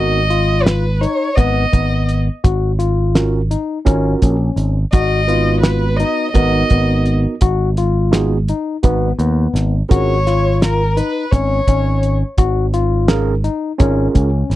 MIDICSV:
0, 0, Header, 1, 6, 480
1, 0, Start_track
1, 0, Tempo, 710059
1, 1647, Time_signature, 7, 3, 24, 8
1, 9842, End_track
2, 0, Start_track
2, 0, Title_t, "Violin"
2, 0, Program_c, 0, 40
2, 0, Note_on_c, 0, 75, 93
2, 426, Note_on_c, 0, 71, 78
2, 436, Note_off_c, 0, 75, 0
2, 683, Note_on_c, 0, 73, 76
2, 693, Note_off_c, 0, 71, 0
2, 914, Note_on_c, 0, 75, 79
2, 924, Note_off_c, 0, 73, 0
2, 1461, Note_off_c, 0, 75, 0
2, 3332, Note_on_c, 0, 75, 88
2, 3785, Note_off_c, 0, 75, 0
2, 3792, Note_on_c, 0, 71, 73
2, 4033, Note_on_c, 0, 75, 80
2, 4043, Note_off_c, 0, 71, 0
2, 4265, Note_off_c, 0, 75, 0
2, 4269, Note_on_c, 0, 75, 85
2, 4794, Note_off_c, 0, 75, 0
2, 6707, Note_on_c, 0, 73, 83
2, 7152, Note_off_c, 0, 73, 0
2, 7192, Note_on_c, 0, 70, 81
2, 7416, Note_on_c, 0, 71, 70
2, 7426, Note_off_c, 0, 70, 0
2, 7643, Note_on_c, 0, 73, 73
2, 7653, Note_off_c, 0, 71, 0
2, 8185, Note_off_c, 0, 73, 0
2, 9842, End_track
3, 0, Start_track
3, 0, Title_t, "Tine electric piano"
3, 0, Program_c, 1, 4
3, 0, Note_on_c, 1, 59, 53
3, 0, Note_on_c, 1, 63, 45
3, 0, Note_on_c, 1, 66, 46
3, 0, Note_on_c, 1, 70, 58
3, 126, Note_off_c, 1, 70, 0
3, 127, Note_off_c, 1, 59, 0
3, 127, Note_off_c, 1, 63, 0
3, 129, Note_off_c, 1, 66, 0
3, 2128, Note_on_c, 1, 61, 63
3, 2132, Note_on_c, 1, 65, 58
3, 2132, Note_on_c, 1, 66, 59
3, 2133, Note_on_c, 1, 70, 62
3, 2297, Note_off_c, 1, 61, 0
3, 2299, Note_off_c, 1, 65, 0
3, 2299, Note_off_c, 1, 66, 0
3, 2299, Note_off_c, 1, 70, 0
3, 2604, Note_on_c, 1, 61, 68
3, 2606, Note_on_c, 1, 65, 66
3, 2608, Note_on_c, 1, 70, 74
3, 2609, Note_on_c, 1, 66, 63
3, 2943, Note_off_c, 1, 61, 0
3, 2944, Note_off_c, 1, 65, 0
3, 2945, Note_off_c, 1, 70, 0
3, 2946, Note_off_c, 1, 66, 0
3, 3567, Note_on_c, 1, 59, 52
3, 3567, Note_on_c, 1, 66, 51
3, 3569, Note_on_c, 1, 63, 48
3, 3569, Note_on_c, 1, 71, 61
3, 4242, Note_off_c, 1, 59, 0
3, 4242, Note_off_c, 1, 66, 0
3, 4243, Note_off_c, 1, 63, 0
3, 4243, Note_off_c, 1, 71, 0
3, 4284, Note_on_c, 1, 59, 56
3, 4286, Note_on_c, 1, 66, 52
3, 4287, Note_on_c, 1, 63, 59
3, 4288, Note_on_c, 1, 70, 63
3, 4960, Note_off_c, 1, 59, 0
3, 4961, Note_off_c, 1, 66, 0
3, 4962, Note_off_c, 1, 63, 0
3, 4962, Note_off_c, 1, 70, 0
3, 5486, Note_on_c, 1, 63, 65
3, 5489, Note_on_c, 1, 59, 65
3, 5489, Note_on_c, 1, 66, 56
3, 5491, Note_on_c, 1, 68, 71
3, 5657, Note_off_c, 1, 63, 0
3, 5659, Note_off_c, 1, 59, 0
3, 5659, Note_off_c, 1, 66, 0
3, 5659, Note_off_c, 1, 68, 0
3, 5969, Note_on_c, 1, 59, 60
3, 5970, Note_on_c, 1, 63, 59
3, 5970, Note_on_c, 1, 66, 65
3, 5974, Note_on_c, 1, 71, 72
3, 6139, Note_off_c, 1, 59, 0
3, 6139, Note_off_c, 1, 63, 0
3, 6139, Note_off_c, 1, 66, 0
3, 6141, Note_off_c, 1, 71, 0
3, 6684, Note_on_c, 1, 65, 50
3, 6685, Note_on_c, 1, 61, 57
3, 6685, Note_on_c, 1, 68, 54
3, 6686, Note_on_c, 1, 70, 64
3, 6856, Note_off_c, 1, 61, 0
3, 6856, Note_off_c, 1, 65, 0
3, 6856, Note_off_c, 1, 68, 0
3, 6856, Note_off_c, 1, 70, 0
3, 8845, Note_on_c, 1, 61, 71
3, 8849, Note_on_c, 1, 65, 68
3, 8849, Note_on_c, 1, 68, 77
3, 8850, Note_on_c, 1, 70, 86
3, 9014, Note_off_c, 1, 61, 0
3, 9015, Note_off_c, 1, 65, 0
3, 9016, Note_off_c, 1, 68, 0
3, 9016, Note_off_c, 1, 70, 0
3, 9317, Note_on_c, 1, 61, 82
3, 9321, Note_on_c, 1, 68, 62
3, 9322, Note_on_c, 1, 65, 73
3, 9324, Note_on_c, 1, 70, 76
3, 9657, Note_off_c, 1, 61, 0
3, 9659, Note_off_c, 1, 65, 0
3, 9659, Note_off_c, 1, 68, 0
3, 9660, Note_off_c, 1, 70, 0
3, 9842, End_track
4, 0, Start_track
4, 0, Title_t, "Tine electric piano"
4, 0, Program_c, 2, 4
4, 0, Note_on_c, 2, 66, 69
4, 148, Note_off_c, 2, 66, 0
4, 203, Note_on_c, 2, 65, 67
4, 572, Note_off_c, 2, 65, 0
4, 685, Note_on_c, 2, 63, 64
4, 869, Note_off_c, 2, 63, 0
4, 927, Note_on_c, 2, 59, 82
4, 1111, Note_off_c, 2, 59, 0
4, 1166, Note_on_c, 2, 59, 56
4, 1536, Note_off_c, 2, 59, 0
4, 1649, Note_on_c, 2, 66, 69
4, 1833, Note_off_c, 2, 66, 0
4, 1886, Note_on_c, 2, 65, 67
4, 2256, Note_off_c, 2, 65, 0
4, 2370, Note_on_c, 2, 63, 64
4, 2554, Note_off_c, 2, 63, 0
4, 2613, Note_on_c, 2, 61, 78
4, 2796, Note_off_c, 2, 61, 0
4, 2858, Note_on_c, 2, 61, 55
4, 3224, Note_off_c, 2, 61, 0
4, 3335, Note_on_c, 2, 66, 75
4, 3517, Note_off_c, 2, 66, 0
4, 3576, Note_on_c, 2, 65, 65
4, 3943, Note_off_c, 2, 65, 0
4, 4056, Note_on_c, 2, 63, 68
4, 4239, Note_off_c, 2, 63, 0
4, 4295, Note_on_c, 2, 59, 75
4, 4478, Note_off_c, 2, 59, 0
4, 4535, Note_on_c, 2, 59, 62
4, 4902, Note_off_c, 2, 59, 0
4, 5015, Note_on_c, 2, 66, 83
4, 5198, Note_off_c, 2, 66, 0
4, 5258, Note_on_c, 2, 65, 68
4, 5624, Note_off_c, 2, 65, 0
4, 5741, Note_on_c, 2, 63, 62
4, 5921, Note_off_c, 2, 63, 0
4, 5981, Note_on_c, 2, 59, 81
4, 6161, Note_off_c, 2, 59, 0
4, 6222, Note_on_c, 2, 59, 61
4, 6586, Note_off_c, 2, 59, 0
4, 6700, Note_on_c, 2, 66, 77
4, 6880, Note_off_c, 2, 66, 0
4, 6942, Note_on_c, 2, 65, 67
4, 7305, Note_off_c, 2, 65, 0
4, 7415, Note_on_c, 2, 63, 63
4, 7597, Note_off_c, 2, 63, 0
4, 7656, Note_on_c, 2, 61, 71
4, 7837, Note_off_c, 2, 61, 0
4, 7897, Note_on_c, 2, 61, 69
4, 8262, Note_off_c, 2, 61, 0
4, 8372, Note_on_c, 2, 66, 79
4, 8554, Note_off_c, 2, 66, 0
4, 8610, Note_on_c, 2, 65, 72
4, 8977, Note_off_c, 2, 65, 0
4, 9086, Note_on_c, 2, 63, 66
4, 9270, Note_off_c, 2, 63, 0
4, 9325, Note_on_c, 2, 61, 82
4, 9509, Note_off_c, 2, 61, 0
4, 9562, Note_on_c, 2, 61, 60
4, 9842, Note_off_c, 2, 61, 0
4, 9842, End_track
5, 0, Start_track
5, 0, Title_t, "Picked electric bass"
5, 0, Program_c, 3, 34
5, 0, Note_on_c, 3, 32, 75
5, 710, Note_off_c, 3, 32, 0
5, 928, Note_on_c, 3, 32, 78
5, 1113, Note_off_c, 3, 32, 0
5, 1171, Note_on_c, 3, 32, 78
5, 1542, Note_off_c, 3, 32, 0
5, 1653, Note_on_c, 3, 32, 75
5, 2396, Note_off_c, 3, 32, 0
5, 2612, Note_on_c, 3, 32, 97
5, 2797, Note_off_c, 3, 32, 0
5, 2854, Note_on_c, 3, 34, 81
5, 3039, Note_off_c, 3, 34, 0
5, 3084, Note_on_c, 3, 32, 69
5, 3273, Note_off_c, 3, 32, 0
5, 3331, Note_on_c, 3, 32, 82
5, 4075, Note_off_c, 3, 32, 0
5, 4291, Note_on_c, 3, 32, 90
5, 4478, Note_off_c, 3, 32, 0
5, 4533, Note_on_c, 3, 32, 69
5, 4905, Note_off_c, 3, 32, 0
5, 5013, Note_on_c, 3, 32, 77
5, 5756, Note_off_c, 3, 32, 0
5, 5974, Note_on_c, 3, 32, 86
5, 6159, Note_off_c, 3, 32, 0
5, 6210, Note_on_c, 3, 39, 87
5, 6396, Note_off_c, 3, 39, 0
5, 6446, Note_on_c, 3, 32, 72
5, 6634, Note_off_c, 3, 32, 0
5, 6697, Note_on_c, 3, 32, 79
5, 7438, Note_off_c, 3, 32, 0
5, 7655, Note_on_c, 3, 32, 94
5, 7838, Note_off_c, 3, 32, 0
5, 7891, Note_on_c, 3, 32, 79
5, 8261, Note_off_c, 3, 32, 0
5, 8368, Note_on_c, 3, 32, 77
5, 9110, Note_off_c, 3, 32, 0
5, 9330, Note_on_c, 3, 32, 96
5, 9514, Note_off_c, 3, 32, 0
5, 9564, Note_on_c, 3, 37, 82
5, 9750, Note_off_c, 3, 37, 0
5, 9800, Note_on_c, 3, 32, 70
5, 9842, Note_off_c, 3, 32, 0
5, 9842, End_track
6, 0, Start_track
6, 0, Title_t, "Drums"
6, 206, Note_on_c, 9, 42, 50
6, 273, Note_off_c, 9, 42, 0
6, 449, Note_on_c, 9, 38, 101
6, 449, Note_on_c, 9, 42, 63
6, 517, Note_off_c, 9, 38, 0
6, 517, Note_off_c, 9, 42, 0
6, 696, Note_on_c, 9, 42, 54
6, 763, Note_off_c, 9, 42, 0
6, 929, Note_on_c, 9, 42, 72
6, 931, Note_on_c, 9, 36, 86
6, 997, Note_off_c, 9, 42, 0
6, 998, Note_off_c, 9, 36, 0
6, 1170, Note_on_c, 9, 42, 59
6, 1172, Note_on_c, 9, 36, 71
6, 1238, Note_off_c, 9, 42, 0
6, 1240, Note_off_c, 9, 36, 0
6, 1411, Note_on_c, 9, 42, 49
6, 1478, Note_off_c, 9, 42, 0
6, 1653, Note_on_c, 9, 36, 99
6, 1653, Note_on_c, 9, 42, 74
6, 1720, Note_off_c, 9, 36, 0
6, 1721, Note_off_c, 9, 42, 0
6, 1890, Note_on_c, 9, 42, 57
6, 1958, Note_off_c, 9, 42, 0
6, 2132, Note_on_c, 9, 38, 97
6, 2132, Note_on_c, 9, 42, 82
6, 2200, Note_off_c, 9, 38, 0
6, 2200, Note_off_c, 9, 42, 0
6, 2373, Note_on_c, 9, 42, 62
6, 2441, Note_off_c, 9, 42, 0
6, 2612, Note_on_c, 9, 42, 75
6, 2615, Note_on_c, 9, 36, 100
6, 2680, Note_off_c, 9, 42, 0
6, 2682, Note_off_c, 9, 36, 0
6, 2852, Note_on_c, 9, 42, 60
6, 2855, Note_on_c, 9, 36, 72
6, 2920, Note_off_c, 9, 42, 0
6, 2923, Note_off_c, 9, 36, 0
6, 3090, Note_on_c, 9, 42, 53
6, 3158, Note_off_c, 9, 42, 0
6, 3330, Note_on_c, 9, 42, 75
6, 3335, Note_on_c, 9, 36, 103
6, 3397, Note_off_c, 9, 42, 0
6, 3403, Note_off_c, 9, 36, 0
6, 3572, Note_on_c, 9, 42, 49
6, 3640, Note_off_c, 9, 42, 0
6, 3809, Note_on_c, 9, 38, 100
6, 3809, Note_on_c, 9, 42, 79
6, 3877, Note_off_c, 9, 38, 0
6, 3877, Note_off_c, 9, 42, 0
6, 4053, Note_on_c, 9, 42, 58
6, 4121, Note_off_c, 9, 42, 0
6, 4290, Note_on_c, 9, 42, 67
6, 4295, Note_on_c, 9, 36, 87
6, 4357, Note_off_c, 9, 42, 0
6, 4362, Note_off_c, 9, 36, 0
6, 4528, Note_on_c, 9, 42, 50
6, 4535, Note_on_c, 9, 36, 73
6, 4595, Note_off_c, 9, 42, 0
6, 4602, Note_off_c, 9, 36, 0
6, 4770, Note_on_c, 9, 42, 44
6, 4837, Note_off_c, 9, 42, 0
6, 5008, Note_on_c, 9, 42, 82
6, 5015, Note_on_c, 9, 36, 108
6, 5076, Note_off_c, 9, 42, 0
6, 5083, Note_off_c, 9, 36, 0
6, 5254, Note_on_c, 9, 42, 52
6, 5321, Note_off_c, 9, 42, 0
6, 5494, Note_on_c, 9, 38, 94
6, 5494, Note_on_c, 9, 42, 75
6, 5562, Note_off_c, 9, 38, 0
6, 5562, Note_off_c, 9, 42, 0
6, 5735, Note_on_c, 9, 42, 54
6, 5803, Note_off_c, 9, 42, 0
6, 5971, Note_on_c, 9, 42, 75
6, 5976, Note_on_c, 9, 36, 90
6, 6038, Note_off_c, 9, 42, 0
6, 6044, Note_off_c, 9, 36, 0
6, 6215, Note_on_c, 9, 42, 64
6, 6283, Note_off_c, 9, 42, 0
6, 6461, Note_on_c, 9, 38, 29
6, 6461, Note_on_c, 9, 42, 56
6, 6529, Note_off_c, 9, 38, 0
6, 6529, Note_off_c, 9, 42, 0
6, 6699, Note_on_c, 9, 36, 105
6, 6699, Note_on_c, 9, 42, 82
6, 6766, Note_off_c, 9, 42, 0
6, 6767, Note_off_c, 9, 36, 0
6, 6941, Note_on_c, 9, 38, 31
6, 6941, Note_on_c, 9, 42, 55
6, 7009, Note_off_c, 9, 38, 0
6, 7009, Note_off_c, 9, 42, 0
6, 7180, Note_on_c, 9, 38, 97
6, 7180, Note_on_c, 9, 42, 84
6, 7248, Note_off_c, 9, 38, 0
6, 7248, Note_off_c, 9, 42, 0
6, 7417, Note_on_c, 9, 42, 56
6, 7485, Note_off_c, 9, 42, 0
6, 7656, Note_on_c, 9, 36, 86
6, 7657, Note_on_c, 9, 42, 68
6, 7723, Note_off_c, 9, 36, 0
6, 7725, Note_off_c, 9, 42, 0
6, 7893, Note_on_c, 9, 36, 73
6, 7893, Note_on_c, 9, 42, 60
6, 7961, Note_off_c, 9, 36, 0
6, 7961, Note_off_c, 9, 42, 0
6, 8133, Note_on_c, 9, 42, 52
6, 8200, Note_off_c, 9, 42, 0
6, 8367, Note_on_c, 9, 42, 75
6, 8371, Note_on_c, 9, 36, 96
6, 8435, Note_off_c, 9, 42, 0
6, 8438, Note_off_c, 9, 36, 0
6, 8610, Note_on_c, 9, 42, 55
6, 8677, Note_off_c, 9, 42, 0
6, 8844, Note_on_c, 9, 38, 109
6, 8844, Note_on_c, 9, 42, 69
6, 8912, Note_off_c, 9, 38, 0
6, 8912, Note_off_c, 9, 42, 0
6, 9088, Note_on_c, 9, 42, 49
6, 9155, Note_off_c, 9, 42, 0
6, 9326, Note_on_c, 9, 42, 65
6, 9329, Note_on_c, 9, 36, 96
6, 9393, Note_off_c, 9, 42, 0
6, 9397, Note_off_c, 9, 36, 0
6, 9566, Note_on_c, 9, 42, 58
6, 9569, Note_on_c, 9, 36, 76
6, 9634, Note_off_c, 9, 42, 0
6, 9636, Note_off_c, 9, 36, 0
6, 9811, Note_on_c, 9, 38, 27
6, 9811, Note_on_c, 9, 42, 47
6, 9842, Note_off_c, 9, 38, 0
6, 9842, Note_off_c, 9, 42, 0
6, 9842, End_track
0, 0, End_of_file